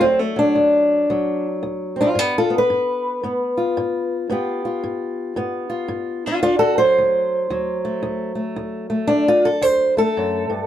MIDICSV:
0, 0, Header, 1, 2, 480
1, 0, Start_track
1, 0, Tempo, 533808
1, 31, Time_signature, 4, 2, 24, 8
1, 9592, End_track
2, 0, Start_track
2, 0, Title_t, "Steel-string acoustic guitar"
2, 0, Program_c, 0, 25
2, 0, Note_on_c, 0, 54, 42
2, 6, Note_on_c, 0, 60, 100
2, 24, Note_on_c, 0, 38, 77
2, 172, Note_off_c, 0, 60, 0
2, 172, Note_on_c, 0, 57, 87
2, 314, Note_off_c, 0, 54, 0
2, 325, Note_on_c, 0, 54, 44
2, 342, Note_off_c, 0, 57, 0
2, 349, Note_on_c, 0, 62, 94
2, 471, Note_off_c, 0, 38, 0
2, 499, Note_on_c, 0, 38, 76
2, 949, Note_off_c, 0, 38, 0
2, 978, Note_off_c, 0, 54, 0
2, 988, Note_on_c, 0, 38, 75
2, 989, Note_on_c, 0, 54, 55
2, 1311, Note_off_c, 0, 62, 0
2, 1434, Note_off_c, 0, 38, 0
2, 1463, Note_on_c, 0, 38, 74
2, 1762, Note_on_c, 0, 60, 45
2, 1804, Note_on_c, 0, 62, 83
2, 1813, Note_on_c, 0, 65, 87
2, 1865, Note_off_c, 0, 62, 0
2, 1911, Note_off_c, 0, 38, 0
2, 1928, Note_off_c, 0, 60, 0
2, 1935, Note_on_c, 0, 43, 80
2, 1963, Note_off_c, 0, 65, 0
2, 1966, Note_off_c, 0, 54, 0
2, 1966, Note_on_c, 0, 59, 82
2, 1976, Note_on_c, 0, 67, 95
2, 2120, Note_off_c, 0, 59, 0
2, 2125, Note_off_c, 0, 67, 0
2, 2140, Note_on_c, 0, 69, 89
2, 2141, Note_on_c, 0, 65, 79
2, 2249, Note_on_c, 0, 59, 48
2, 2286, Note_off_c, 0, 69, 0
2, 2288, Note_off_c, 0, 65, 0
2, 2322, Note_on_c, 0, 71, 98
2, 2387, Note_off_c, 0, 43, 0
2, 2428, Note_on_c, 0, 43, 73
2, 2874, Note_off_c, 0, 43, 0
2, 2908, Note_on_c, 0, 43, 75
2, 2912, Note_off_c, 0, 59, 0
2, 2915, Note_on_c, 0, 59, 51
2, 3214, Note_on_c, 0, 65, 54
2, 3354, Note_off_c, 0, 43, 0
2, 3391, Note_on_c, 0, 43, 78
2, 3739, Note_off_c, 0, 71, 0
2, 3836, Note_off_c, 0, 43, 0
2, 3853, Note_off_c, 0, 59, 0
2, 3855, Note_off_c, 0, 65, 0
2, 3862, Note_on_c, 0, 43, 73
2, 3870, Note_on_c, 0, 59, 52
2, 3882, Note_on_c, 0, 65, 48
2, 3886, Note_on_c, 0, 67, 55
2, 4171, Note_off_c, 0, 65, 0
2, 4182, Note_on_c, 0, 65, 47
2, 4311, Note_off_c, 0, 43, 0
2, 4348, Note_on_c, 0, 43, 77
2, 4794, Note_off_c, 0, 43, 0
2, 4818, Note_off_c, 0, 59, 0
2, 4822, Note_on_c, 0, 43, 81
2, 4829, Note_on_c, 0, 59, 55
2, 5111, Note_off_c, 0, 65, 0
2, 5122, Note_on_c, 0, 65, 58
2, 5271, Note_off_c, 0, 43, 0
2, 5290, Note_on_c, 0, 43, 82
2, 5629, Note_off_c, 0, 67, 0
2, 5629, Note_on_c, 0, 62, 87
2, 5631, Note_off_c, 0, 65, 0
2, 5640, Note_on_c, 0, 65, 99
2, 5745, Note_off_c, 0, 43, 0
2, 5768, Note_off_c, 0, 62, 0
2, 5768, Note_off_c, 0, 65, 0
2, 5769, Note_off_c, 0, 59, 0
2, 5778, Note_on_c, 0, 65, 107
2, 5780, Note_on_c, 0, 62, 98
2, 5783, Note_on_c, 0, 38, 73
2, 5921, Note_off_c, 0, 65, 0
2, 5923, Note_off_c, 0, 62, 0
2, 5925, Note_on_c, 0, 66, 83
2, 5926, Note_on_c, 0, 69, 100
2, 6092, Note_off_c, 0, 69, 0
2, 6096, Note_on_c, 0, 72, 106
2, 6100, Note_off_c, 0, 66, 0
2, 6104, Note_on_c, 0, 54, 49
2, 6231, Note_off_c, 0, 38, 0
2, 6280, Note_on_c, 0, 38, 79
2, 6720, Note_off_c, 0, 38, 0
2, 6746, Note_off_c, 0, 54, 0
2, 6747, Note_on_c, 0, 38, 79
2, 6750, Note_on_c, 0, 54, 52
2, 7056, Note_on_c, 0, 57, 53
2, 7194, Note_off_c, 0, 38, 0
2, 7216, Note_on_c, 0, 38, 81
2, 7507, Note_off_c, 0, 57, 0
2, 7511, Note_on_c, 0, 57, 47
2, 7544, Note_off_c, 0, 72, 0
2, 7668, Note_off_c, 0, 38, 0
2, 7700, Note_on_c, 0, 38, 76
2, 7997, Note_off_c, 0, 57, 0
2, 8001, Note_on_c, 0, 57, 50
2, 8150, Note_off_c, 0, 38, 0
2, 8160, Note_on_c, 0, 62, 98
2, 8178, Note_on_c, 0, 38, 74
2, 8336, Note_off_c, 0, 62, 0
2, 8344, Note_off_c, 0, 57, 0
2, 8347, Note_on_c, 0, 65, 107
2, 8499, Note_on_c, 0, 69, 102
2, 8510, Note_off_c, 0, 65, 0
2, 8628, Note_off_c, 0, 38, 0
2, 8646, Note_on_c, 0, 38, 73
2, 8653, Note_off_c, 0, 69, 0
2, 8653, Note_on_c, 0, 72, 93
2, 8965, Note_on_c, 0, 57, 49
2, 8974, Note_off_c, 0, 72, 0
2, 8977, Note_on_c, 0, 69, 100
2, 9102, Note_off_c, 0, 38, 0
2, 9146, Note_on_c, 0, 42, 70
2, 9436, Note_off_c, 0, 42, 0
2, 9439, Note_on_c, 0, 43, 62
2, 9592, Note_off_c, 0, 43, 0
2, 9592, Note_off_c, 0, 54, 0
2, 9592, Note_off_c, 0, 57, 0
2, 9592, Note_off_c, 0, 69, 0
2, 9592, End_track
0, 0, End_of_file